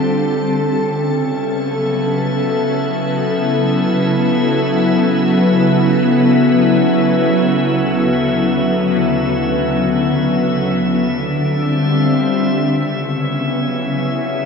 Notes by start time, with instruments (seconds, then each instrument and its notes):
Already playing: ambient pad D3 G3 C4 F4 A4
0.42 ambient pad C#3, synth texture E5
1.07 ambient pad B3
1.26 ambient pad F#3
2.47 ambient pad E4
7.29 ambient pad D2
10.71 ambient pad D3
11.28 ambient pad G3
11.34 ambient pad C4
11.47 ambient pad F4
12.42 ambient pad C#3
12.62 ambient pad B3
12.96 ambient pad F#3
13.19 ambient pad E4 G#4
14.13 synth drone F#3, synth texture E5